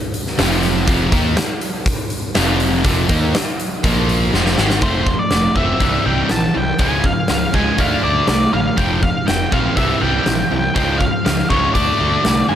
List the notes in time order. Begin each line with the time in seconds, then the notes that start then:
0.14 open hi-hat
0.27 snare
0.38 F1 F2 C3 F3, snare, open hi-hat
0.63 snare, open hi-hat
0.87 F1 F2 C3 F3, kick, open hi-hat
1.12 D#2 D#3 A#3 D#4, kick, open hi-hat
1.37 snare, open hi-hat
1.61 open hi-hat
1.86 kick, open hi-hat
2.10 open hi-hat
2.35 F1 F2 C3 F3, snare, open hi-hat
2.60 open hi-hat
2.84 F1 F2 C3 F3, kick, open hi-hat
3.09 D#2 D#3 A#3 D#4, kick, open hi-hat
3.35 snare, open hi-hat
3.60 open hi-hat
3.84 A#1 A#2 F3 A#3, kick, open hi-hat
4.09 open hi-hat
4.33 F1 F2 C3 F3, snare
4.46 snare
4.57 G#1 G#2 D#3 G#3, snare
4.70 snare
4.81 F1 F3 A3 C4 C5, kick, open hi-hat
5.07 F3 A3, kick
5.19 D5
5.31 F1 F3 A3, snare, open hi-hat
5.56 F1 F3 A3 C4 E5, kick
5.80 C2 C3 E3 G3, kick, open hi-hat
6.05 C2 C3 E3 G3 G5
6.29 A#1 C3 E3 A5, snare, open hi-hat
6.54 C2 C3 E3 G5
6.79 C#2 C#3 F3 G#3 G#5, kick, open hi-hat
7.04 C#3 F3 F5, kick
7.28 C#2 C#3 F3 F5, snare, open hi-hat
7.53 C#2 C#3 F3 G#3 G#5, kick
7.77 D2 D3 A3 D4 F5, kick, open hi-hat
8.02 D2 D3 A3 D4 D5
8.27 C2 D3 A3 D5, snare, open hi-hat
8.53 A1 D3 A3 F5
8.76 F1 F2 C3 F3 G5, kick, open hi-hat
9.01 F2 C3 F5, kick
9.27 F1 F2 C3 G5, snare, open hi-hat
9.52 A#1 F2 C3 F3 F5, kick
9.76 C2 C3 E3 G3 E5, kick, open hi-hat
10.01 C2 C3 E3 G3 G5
10.26 A#1 C3 E3, snare, open hi-hat
10.52 C2 C3 E3
10.75 C#2 C#3 F3 G#3 G5, kick, open hi-hat
10.98 C#3 F3 F5, kick
11.25 C#2 C#3 F3, snare, open hi-hat
11.39 snare
11.50 C#2 C#3 F3 G#3 C#5, kick
11.74 D2 D3 A3 D4 D5, kick, open hi-hat
11.98 D2 D3 A3 D4
12.24 C2 D3 A3, snare, open hi-hat
12.48 G2 D3 A3 G#5